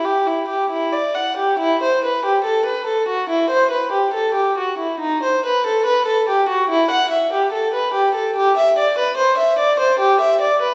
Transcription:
0.04 0.26 G4 medium
0.27 0.48 E4 medium
0.48 0.70 G4 soft
0.70 0.92 E4 medium
0.92 1.15 D5 medium
1.15 1.38 F#5 soft
1.37 1.59 G4 soft
1.59 1.81 E4 medium
1.82 2.03 C5 medium
2.04 2.24 B4 medium
2.25 2.45 G4 medium
2.44 2.65 A4 medium
2.65 2.86 B4 medium
2.87 3.07 A4 medium
3.08 3.28 F#4 medium
3.29 3.50 E4 medium
3.50 3.70 C5 medium
3.71 3.91 B4 medium
3.92 4.13 G4 medium
4.13 4.34 A4 medium
4.34 4.56 G4 medium
4.58 4.78 F#4 soft
4.78 5.00 E4 soft
5.00 5.22 D#4 medium
5.23 5.44 C5 medium
5.46 5.66 B4 medium
5.66 5.86 A4 medium
5.86 6.06 B4 medium
6.06 6.27 A4 medium
6.29 6.48 G4 medium
6.49 6.69 F#4 medium
6.70 6.89 E4 medium
6.91 7.10 F#5 medium
7.11 7.31 E5 medium
7.33 7.52 G4 medium
7.52 7.72 A4 medium
7.74 7.93 B4 medium
7.94 8.13 G4 medium
8.15 8.34 A4 medium
8.36 8.55 G4 medium
8.57 8.76 E5 medium
8.78 8.97 D5 medium
8.98 9.17 B4 medium
9.17 9.37 C5 medium
9.38 9.57 E5 medium
9.59 9.78 D5 medium
9.80 9.99 C5 medium
9.99 10.19 G4 medium
10.21 10.40 E5 medium
10.41 10.61 D5 medium
10.62 10.74 B4 medium

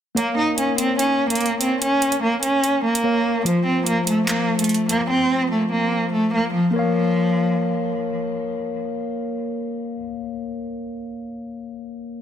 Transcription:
0.15 3.00 A#3 medium
0.15 0.34 A#3 medium
0.15 3.00 A#4 medium
0.15 3.01 C#5 medium
0.15 closed hi-hat medium
0.19 3.02 F5 medium
0.38 0.55 D#4 medium
0.58 0.76 C#4 medium
0.58 closed hi-hat medium
0.78 0.96 C4 medium
0.78 closed hi-hat medium
0.99 1.28 C#4 medium
0.99 closed hi-hat medium
1.30 1.59 A#3 medium
1.30 closed hi-hat medium
1.35 closed hi-hat medium
1.41 closed hi-hat medium
1.46 closed hi-hat soft
1.61 1.78 C4 medium
1.61 closed hi-hat medium
1.82 2.20 C#4 loud
1.82 closed hi-hat medium
2.02 closed hi-hat medium
2.12 closed hi-hat medium
2.23 2.40 A#3 medium
2.43 2.82 C#4 medium
2.43 closed hi-hat medium
2.64 closed hi-hat medium
2.85 3.43 A#3 medium
2.95 closed hi-hat medium
3.03 3.45 A#3 medium
3.03 3.46 A#4 soft
3.03 3.46 C#5 soft
3.03 3.46 F5 medium
3.44 6.70 F3 medium
3.44 3.63 F3 medium
3.44 6.71 F4 medium
3.44 closed hi-hat medium
3.48 6.72 C5 medium
3.66 3.84 C4 medium
3.87 4.04 A#3 medium
3.87 closed hi-hat medium
4.07 4.25 A3 medium
4.07 closed hi-hat medium
4.28 4.57 A#3 medium
4.28 clap loud
4.28 closed hi-hat medium
4.59 4.88 A3 medium
4.59 closed hi-hat medium
4.64 closed hi-hat medium
4.69 closed hi-hat medium
4.74 closed hi-hat soft
4.89 5.07 A#3 medium
4.89 closed hi-hat medium
5.10 5.49 C4 loud
5.51 5.69 A3 medium
5.72 6.11 A#3 medium
6.13 6.30 A3 medium
6.34 6.51 A#3 medium
6.54 6.71 F3 medium
6.71 9.94 A#3 medium
6.71 9.96 A#4 medium
6.75 7.94 F3 medium
6.75 9.99 C#5 medium
6.79 10.02 F5 medium

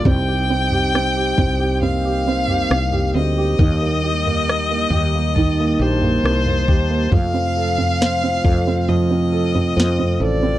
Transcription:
0.00 3.55 G3 soft
0.05 1.34 C2 medium
0.05 1.81 C4 soft
0.05 0.49 C4 medium
0.05 7.08 D#4 medium
0.05 5.31 G4 medium
0.05 1.82 G5 loud
0.05 kick medium
0.05 floor tom medium
0.28 0.71 G4 soft
0.50 0.94 C4 soft
0.71 1.15 G4 soft
0.71 floor tom medium
0.95 1.37 C4 medium
0.95 cross-stick medium
1.16 1.58 G4 soft
1.37 2.66 C2 medium
1.37 1.81 C4 medium
1.37 kick medium
1.37 floor tom soft
1.60 2.04 G4 soft
1.82 7.08 A#3 medium
1.82 2.26 C4 medium
1.82 3.11 F5 loud
1.82 floor tom soft
2.05 2.48 G4 soft
2.27 2.69 C4 soft
2.48 2.91 G4 soft
2.48 floor tom medium
2.70 3.12 C2 medium
2.70 3.14 C4 soft
2.70 cross-stick loud
2.92 3.36 G4 soft
2.92 floor tom medium
3.14 3.56 D2 medium
3.14 3.58 C4 medium
3.14 5.83 D#5 loud
3.38 3.59 G4 soft
3.59 4.87 D#2 medium
3.59 5.36 D#3 medium
3.59 7.08 G3 soft
3.59 kick medium
3.59 floor tom loud
3.82 4.25 A#3 soft
4.03 4.91 G4 soft
4.26 4.69 A#3 soft
4.26 floor tom medium
4.49 6.20 A#4 soft
4.49 cross-stick loud
4.71 5.13 A#3 soft
4.90 5.75 D#2 medium
4.90 5.79 G4 soft
4.90 floor tom medium
5.15 5.58 A#3 soft
5.35 7.09 D#3 medium
5.35 7.10 A5 medium
5.35 kick medium
5.35 floor tom medium
5.60 6.02 A#3 soft
5.79 6.20 A#1 medium
5.79 6.66 G4 soft
5.79 7.15 C5 medium
6.01 6.45 A#3 soft
6.01 floor tom medium
6.23 6.65 C2 medium
6.23 7.10 A#4 soft
6.23 cross-stick medium
6.46 6.89 A#3 soft
6.46 floor tom medium
6.68 7.09 D#2 medium
6.68 7.11 G4 soft
6.68 kick medium
6.90 7.11 A#3 soft
7.12 8.40 F2 medium
7.12 10.59 C3 medium
7.12 8.87 F3 medium
7.12 10.59 F3 soft
7.12 10.59 A3 soft
7.12 10.59 F4 medium
7.12 8.90 F5 loud
7.12 kick medium
7.12 floor tom loud
7.34 7.77 C4 soft
7.57 8.44 A4 soft
7.78 8.22 C4 soft
7.78 floor tom medium
8.01 9.73 C5 soft
8.01 snare medium
8.24 8.66 C4 soft
8.44 9.73 F2 medium
8.44 9.31 A4 soft
8.44 kick medium
8.44 floor tom medium
8.67 9.09 C4 soft
8.88 10.59 F3 medium
8.88 10.24 D#5 medium
8.88 floor tom medium
9.11 9.53 C4 soft
9.32 10.19 A4 soft
9.55 9.98 C4 soft
9.55 floor tom medium
9.77 10.18 F2 medium
9.77 10.59 C5 soft
9.77 snare loud
9.99 10.41 C4 soft
9.99 floor tom medium
10.20 10.59 A1 medium
10.20 10.59 A4 medium
10.20 10.59 D5 medium
10.43 10.59 C4 soft

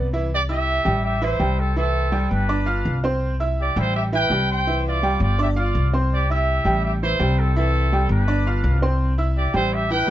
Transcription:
0.00 0.80 C2 medium
0.13 0.28 E3 medium
0.13 0.29 E4 medium
0.13 0.29 E5 medium
0.33 0.41 G4 medium
0.33 0.42 D5 loud
0.49 0.79 E4 medium
0.49 1.00 G4 medium
0.49 0.79 E5 medium
0.49 1.01 E5 loud
0.49 0.79 E6 medium
0.85 1.37 A1 loud
0.85 1.15 G3 medium
0.85 1.15 G4 medium
0.85 1.15 G5 medium
1.04 1.21 G4 medium
1.04 1.21 E5 loud
1.22 1.37 E3 medium
1.22 1.37 E4 medium
1.22 1.59 E4 medium
1.22 1.59 C5 loud
1.22 1.37 E5 medium
1.39 2.25 C2 medium
1.39 1.70 G3 medium
1.39 1.70 G4 medium
1.39 1.70 G5 medium
1.58 1.77 C4 medium
1.58 1.76 A4 medium
1.76 2.06 E3 medium
1.76 2.28 C4 medium
1.76 2.06 E4 medium
1.76 2.28 A4 loud
1.76 2.07 E5 medium
2.12 2.42 G3 medium
2.12 2.42 G4 medium
2.12 2.42 G5 medium
2.30 2.82 G1 medium
2.30 3.00 D4 medium
2.30 2.99 B4 medium
2.49 2.64 D4 medium
2.49 2.64 D5 medium
2.49 2.64 D6 medium
2.66 2.96 F4 medium
2.66 2.97 F5 medium
2.66 2.97 F6 medium
2.85 3.70 C2 loud
3.04 3.34 C4 medium
3.04 3.33 C5 medium
3.04 3.34 C6 medium
3.40 3.70 E4 medium
3.40 3.70 E5 medium
3.40 3.70 E6 medium
3.60 3.76 G4 medium
3.60 3.77 D5 medium
3.76 4.27 A1 loud
3.76 4.06 G3 medium
3.76 3.94 E4 medium
3.76 4.06 G4 medium
3.76 3.95 C5 loud
3.76 4.06 G5 medium
3.95 4.03 G4 medium
3.95 4.04 E5 loud
4.12 4.27 E3 loud
4.12 4.28 E4 medium
4.12 4.47 B4 medium
4.12 4.28 E5 medium
4.12 4.48 G5 loud
4.30 5.15 C2 medium
4.30 4.61 G3 medium
4.30 4.61 G4 medium
4.30 4.61 G5 medium
4.49 4.83 C5 medium
4.49 4.83 G5 loud
4.67 4.97 E3 medium
4.67 4.97 E4 medium
4.67 4.97 E5 medium
4.87 5.21 F4 medium
4.87 5.22 D5 loud
5.03 5.32 G3 medium
5.03 5.33 G4 medium
5.03 5.33 G5 medium
5.20 5.71 G1 loud
5.20 5.39 F4 medium
5.20 5.39 D5 medium
5.38 5.53 D4 medium
5.38 5.49 G4 medium
5.38 5.54 D5 medium
5.38 5.49 E5 medium
5.38 5.54 D6 medium
5.56 5.86 F4 medium
5.56 5.92 F4 medium
5.56 5.92 D5 loud
5.56 5.86 F5 medium
5.56 5.87 F6 medium
5.75 6.60 C2 loud
5.93 6.23 C4 medium
5.93 6.23 C5 medium
5.93 6.23 C6 medium
6.14 6.29 G4 medium
6.14 6.30 D5 loud
6.30 6.59 E4 medium
6.30 6.85 G4 medium
6.30 6.60 E5 medium
6.30 6.84 E5 loud
6.30 6.60 E6 medium
6.65 7.16 A1 medium
6.65 6.95 G3 medium
6.65 6.95 G4 medium
6.65 6.96 G5 medium
6.85 6.93 G4 medium
6.85 6.93 E5 medium
7.03 7.17 E3 medium
7.03 7.36 E4 medium
7.03 7.18 E4 medium
7.03 7.36 C5 loud
7.03 7.18 E5 medium
7.20 8.04 C2 loud
7.20 7.50 G3 medium
7.20 7.50 G4 medium
7.20 7.50 G5 medium
7.39 7.56 C4 medium
7.39 7.56 A4 medium
7.56 7.86 E3 medium
7.56 8.07 C4 medium
7.56 7.86 E4 medium
7.56 8.07 A4 loud
7.56 7.86 E5 medium
7.92 8.22 G3 medium
7.92 8.22 G4 medium
7.92 8.22 G5 medium
8.09 8.60 G1 loud
8.09 8.79 D4 medium
8.09 8.79 B4 medium
8.28 8.43 D4 medium
8.28 8.43 D5 medium
8.28 8.43 D6 medium
8.46 8.76 F4 medium
8.46 8.76 F5 medium
8.46 8.76 F6 medium
8.64 9.49 C2 loud
8.82 9.12 C4 medium
8.82 9.12 C5 medium
8.82 9.12 C6 medium
9.18 9.48 E4 medium
9.18 9.48 E5 medium
9.18 9.48 E6 medium
9.37 9.54 G4 medium
9.37 9.54 D5 medium
9.54 10.05 A1 loud
9.54 9.84 G3 medium
9.54 9.72 E4 medium
9.54 9.84 G4 medium
9.54 9.72 C5 loud
9.54 9.84 G5 medium
9.73 9.91 G4 medium
9.73 9.91 E5 loud
9.90 10.05 E3 medium
9.90 10.05 E4 loud
9.90 10.10 B4 medium
9.90 10.05 E5 medium
9.90 10.10 G5 loud

